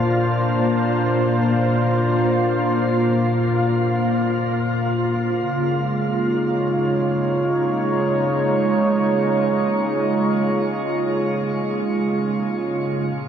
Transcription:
0.00 5.36 A#2 medium
0.00 8.42 A#3 medium
0.00 13.17 A#3 medium
0.00 5.35 D4 medium
0.00 13.17 F4 medium
0.00 13.28 F4 medium
0.00 5.37 C5 medium
5.38 13.09 C#3 medium
5.69 13.10 G#3 medium
6.16 13.09 D#4 medium
6.39 13.08 C#5 medium
13.07 13.28 A#2 medium
13.07 13.28 A#4 medium
13.07 13.28 A#5 medium

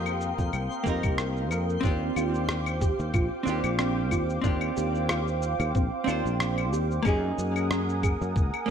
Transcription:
0.00 0.32 F2 medium
0.00 0.81 A#3 medium
0.00 0.82 C4 medium
0.00 1.85 C4 medium
0.00 0.83 D#4 medium
0.00 0.18 G4 medium
0.00 0.84 G4 medium
0.00 1.81 A#4 medium
0.00 1.85 C5 medium
0.00 1.81 F5 medium
0.00 1.81 G5 medium
0.00 1.80 D#6 medium
0.06 claves medium
0.06 shaker soft
0.21 shaker medium
0.38 0.50 F2 medium
0.38 kick medium
0.38 low conga medium
0.38 shaker soft
0.53 0.67 C2 medium
0.53 0.84 C4 medium
0.53 claves medium
0.53 shaker soft
0.71 shaker soft
0.84 0.99 F2 medium
0.84 1.79 A#3 medium
0.84 1.79 C4 medium
0.84 1.81 D#4 medium
0.84 1.17 G4 medium
0.84 kick medium
0.84 shaker medium
0.89 1.82 A#4 medium
1.03 1.51 C2 medium
1.03 kick medium
1.03 claves medium
1.03 shaker soft
1.18 cross-stick medium
1.18 shaker soft
1.37 shaker soft
1.51 1.76 F2 loud
1.51 1.70 A#4 medium
1.51 claves medium
1.51 shaker medium
1.69 shaker soft
1.81 2.09 D#2 medium
1.81 3.42 C4 medium
1.81 2.15 C4 medium
1.81 3.43 D4 medium
1.81 7.01 C5 medium
1.81 7.01 F5 medium
1.81 7.02 G5 medium
1.81 7.02 D6 medium
1.81 kick loud
1.81 shaker soft
1.85 3.44 F4 medium
1.85 3.45 G4 loud
2.16 2.92 D#2 medium
2.16 2.47 F4 medium
2.16 claves medium
2.16 shaker medium
2.34 shaker soft
2.49 cross-stick loud
2.49 shaker soft
2.66 claves medium
2.66 shaker soft
2.81 3.00 G4 medium
2.81 kick loud
2.81 shaker medium
2.99 3.11 D#2 medium
2.99 shaker soft
3.14 3.27 A#1 loud
3.14 3.44 F4 medium
3.14 kick loud
3.14 claves medium
3.14 shaker soft
3.43 3.60 D#2 medium
3.43 4.39 C4 medium
3.43 4.40 D4 medium
3.43 shaker medium
3.48 4.41 F4 medium
3.48 4.42 G4 medium
3.64 4.12 A#1 medium
3.64 claves medium
3.64 shaker soft
3.79 4.10 C4 medium
3.79 cross-stick loud
3.79 shaker soft
4.11 4.37 D#2 loud
4.11 4.43 F4 medium
4.11 kick medium
4.11 claves medium
4.11 shaker medium
4.30 shaker soft
4.41 4.70 D#2 medium
4.41 6.03 C4 medium
4.41 6.04 D4 medium
4.41 6.05 F4 medium
4.41 kick loud
4.41 shaker soft
4.47 6.06 G4 medium
4.61 claves medium
4.76 5.53 D#2 medium
4.76 4.96 G4 medium
4.76 shaker medium
4.95 shaker soft
5.09 5.39 F4 medium
5.09 cross-stick loud
5.09 claves medium
5.09 shaker soft
5.28 shaker soft
5.42 shaker medium
5.60 5.71 D#2 medium
5.60 claves medium
5.60 shaker soft
5.75 5.88 A#1 loud
5.75 6.06 C4 medium
5.75 kick loud
5.75 shaker soft
6.04 6.21 D#2 medium
6.04 7.00 C4 medium
6.04 7.01 D4 medium
6.04 6.39 F4 medium
6.04 7.02 F4 medium
6.04 claves medium
6.04 shaker medium
6.10 7.03 C5 medium
6.25 6.73 A#1 medium
6.25 shaker soft
6.40 cross-stick loud
6.40 shaker soft
6.58 claves medium
6.72 6.98 D#2 loud
6.72 6.92 G4 medium
6.72 shaker medium
6.91 shaker soft
7.03 7.31 F#2 loud
7.03 8.64 A#3 loud
7.03 8.65 C#4 medium
7.03 7.35 G#4 medium
7.03 8.70 A#4 medium
7.03 8.70 F#5 medium
7.03 8.70 G#5 medium
7.03 8.70 D#6 medium
7.03 kick loud
7.03 claves medium
7.03 shaker soft
7.07 8.66 D#4 medium
7.07 8.66 G#4 loud
7.38 8.14 F#2 medium
7.38 shaker medium
7.56 claves medium
7.56 shaker soft
7.70 8.02 C#4 medium
7.70 cross-stick loud
7.70 shaker soft
7.89 shaker soft
8.03 8.34 G#4 medium
8.03 kick loud
8.03 claves medium
8.03 shaker medium
8.21 8.32 F#2 loud
8.21 shaker soft
8.36 8.49 C#2 loud
8.36 kick loud
8.36 shaker soft
8.54 claves medium
8.66 8.70 A#3 medium

